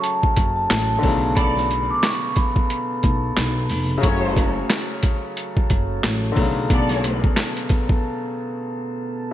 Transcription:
0.00 0.97 C#3 medium
0.00 0.98 F#3 medium
0.00 1.01 F#3 medium
0.00 1.00 A3 medium
0.00 1.01 C#4 medium
0.00 9.33 A4 medium
0.00 0.53 A5 medium
0.00 closed hi-hat medium
0.23 kick medium
0.37 0.65 F#1 medium
0.37 kick loud
0.37 closed hi-hat medium
0.56 1.32 A5 medium
0.70 0.98 A1 loud
0.70 finger snap medium
0.70 snare loud
0.70 clap loud
0.70 closed hi-hat loud
0.99 3.64 D3 medium
0.99 3.65 F#3 medium
1.03 1.87 B1 loud
1.03 4.00 B2 medium
1.03 3.67 A3 medium
1.03 4.00 B3 medium
1.03 kick medium
1.03 open hi-hat medium
1.08 3.68 C#3 medium
1.36 1.65 B3 loud
1.36 1.65 A4 loud
1.36 1.65 D5 loud
1.36 1.87 B5 loud
1.36 kick loud
1.36 closed hi-hat medium
1.57 snare soft
1.71 closed hi-hat medium
1.91 2.02 D6 medium
2.03 finger snap medium
2.03 snare loud
2.03 clap loud
2.03 closed hi-hat medium
2.36 3.99 B5 medium
2.36 kick loud
2.36 closed hi-hat medium
2.56 kick loud
2.70 closed hi-hat loud
3.03 3.32 B1 loud
3.03 kick loud
3.03 closed hi-hat medium
3.37 3.65 B1 loud
3.37 finger snap medium
3.37 snare loud
3.37 clap loud
3.37 closed hi-hat loud
3.70 3.98 F1 loud
3.70 open hi-hat medium
3.98 6.30 C#3 medium
3.98 6.32 F#3 medium
3.98 4.48 A3 loud
3.98 4.48 F#4 loud
3.98 4.48 C#5 loud
4.03 4.59 F#1 loud
4.03 6.34 F#3 medium
4.03 6.33 A3 medium
4.03 6.34 C#4 medium
4.03 kick loud
4.03 closed hi-hat medium
4.07 6.35 C#4 medium
4.37 kick medium
4.37 closed hi-hat medium
4.70 finger snap medium
4.70 snare loud
4.70 clap loud
4.70 closed hi-hat loud
5.03 kick loud
5.03 closed hi-hat medium
5.37 closed hi-hat medium
5.57 kick medium
5.70 5.98 F#1 medium
5.70 kick loud
5.70 closed hi-hat medium
6.04 6.32 A1 loud
6.04 finger snap medium
6.04 snare loud
6.04 clap loud
6.04 closed hi-hat loud
6.32 8.97 D3 medium
6.32 8.99 F#3 medium
6.36 7.21 B1 loud
6.36 9.33 B2 medium
6.36 9.00 A3 medium
6.36 9.33 B3 medium
6.36 kick medium
6.36 open hi-hat medium
6.42 9.02 C#3 medium
6.70 7.15 B3 loud
6.70 7.15 A4 loud
6.70 7.15 D5 loud
6.70 kick loud
6.70 closed hi-hat medium
6.89 snare soft
6.89 closed hi-hat medium
7.04 closed hi-hat medium
7.24 kick loud
7.36 finger snap medium
7.36 snare loud
7.36 clap loud
7.36 closed hi-hat loud
7.57 closed hi-hat medium
7.69 kick loud
7.69 closed hi-hat medium
7.89 kick loud

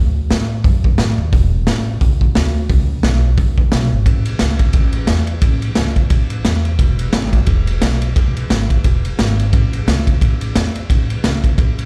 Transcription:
0.00 0.28 D2 medium
0.30 0.62 A2 medium
0.30 snare loud
0.30 open hi-hat medium
0.64 0.96 F#2 medium
0.64 kick loud
0.64 open hi-hat soft
0.84 kick medium
0.98 1.17 A2 loud
0.98 snare loud
0.98 open hi-hat soft
1.18 1.31 D#2 medium
1.33 1.64 E1 loud
1.33 kick loud
1.33 open hi-hat medium
1.67 1.98 A1 medium
1.67 snare loud
1.67 open hi-hat medium
2.01 2.32 C#2 medium
2.01 kick loud
2.01 open hi-hat medium
2.21 kick medium
2.35 2.67 D2 loud
2.35 snare loud
2.35 open hi-hat medium
2.69 3.01 C#2 medium
2.69 kick loud
2.69 open hi-hat medium
3.03 3.34 B1 medium
3.03 snare loud
3.03 open hi-hat medium
3.37 3.69 G#1 medium
3.37 kick loud
3.37 open hi-hat soft
3.58 kick medium
3.72 3.90 B1 medium
3.72 snare loud
3.72 open hi-hat soft
3.92 4.05 G#1 medium
4.06 4.34 A1 medium
4.06 kick loud
4.06 ride medium
4.25 ride medium
4.39 4.69 C#2 medium
4.39 snare loud
4.39 ride medium
4.59 kick medium
4.59 ride medium
4.73 5.02 A1 medium
4.73 kick loud
4.73 ride medium
4.92 ride medium
5.07 5.37 E2 loud
5.07 snare loud
5.07 ride medium
5.27 ride medium
5.41 5.71 A1 loud
5.41 kick loud
5.41 ride medium
5.62 ride medium
5.75 6.05 C#2 medium
5.75 snare loud
5.75 ride medium
5.96 kick medium
5.96 ride medium
6.10 6.39 A1 medium
6.10 kick loud
6.10 ride medium
6.30 ride medium
6.45 6.73 E2 medium
6.45 snare loud
6.45 ride medium
6.65 ride medium
6.79 7.08 E1 medium
6.79 kick loud
6.79 ride medium
6.99 ride medium
7.13 7.42 G#1 medium
7.13 snare loud
7.13 ride medium
7.33 kick medium
7.33 ride medium
7.46 7.76 E1 medium
7.46 kick loud
7.46 ride medium
7.67 ride medium
7.81 8.10 B1 medium
7.81 snare loud
7.81 ride loud
8.02 ride medium
8.16 8.45 E1 medium
8.16 kick loud
8.16 ride medium
8.37 ride medium
8.50 8.79 G#1 medium
8.50 snare loud
8.50 ride medium
8.70 kick medium
8.70 ride medium
8.84 9.13 E1 medium
8.84 kick loud
8.84 ride medium
9.05 ride medium
9.19 9.47 G#1 loud
9.19 snare loud
9.19 ride medium
9.39 ride medium
9.53 9.82 A1 medium
9.53 kick loud
9.53 ride medium
9.73 ride medium
9.87 10.15 C#2 medium
9.87 snare loud
9.87 ride medium
10.07 kick medium
10.07 ride medium
10.21 10.50 A1 medium
10.21 kick loud
10.21 ride medium
10.41 ride medium
10.55 10.84 E2 medium
10.55 snare loud
10.55 ride medium
10.75 ride medium
10.90 11.18 A1 medium
10.90 kick loud
10.90 ride medium
11.10 ride medium
11.24 11.52 C#2 medium
11.24 snare loud
11.24 ride medium
11.44 kick medium
11.44 ride medium
11.58 11.85 A1 medium
11.58 kick loud
11.58 ride medium
11.79 ride medium

